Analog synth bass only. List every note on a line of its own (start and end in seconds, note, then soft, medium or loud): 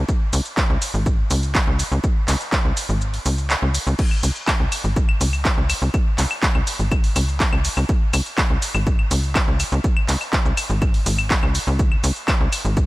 0.33 0.41 C#2 loud
0.70 0.78 C#2 medium
0.94 1.24 G#1 medium
1.31 1.61 C#2 loud
1.67 1.83 C#2 medium
1.92 2.00 C#2 loud
2.28 2.36 C#2 medium
2.65 2.73 C#2 medium
2.89 3.19 G#1 medium
3.26 3.56 C#2 loud
3.62 3.79 C#2 medium
3.87 3.95 C#2 loud
4.23 4.32 C#2 loud
4.60 4.68 C#2 medium
4.84 5.14 G#1 medium
5.21 5.51 C#2 loud
5.58 5.74 C#2 medium
5.82 5.90 C#2 loud
6.18 6.27 C#2 medium
6.55 6.63 C#2 medium
6.80 7.10 G#1 medium
7.16 7.46 C#2 loud
7.53 7.69 C#2 medium
7.77 7.85 C#2 loud
8.14 8.22 C#2 loud
8.50 8.58 C#2 medium
8.75 9.05 G#1 medium
9.11 9.41 C#2 loud
9.48 9.64 C#2 medium
9.72 9.80 C#2 loud
10.09 10.17 C#2 loud
10.45 10.53 C#2 medium
10.70 11.00 G#1 medium
11.06 11.36 G#1 medium
11.43 11.59 C#2 medium
11.67 11.97 C#2 loud
12.04 12.12 C#2 loud
12.40 12.49 C#2 medium
12.65 12.86 G#1 medium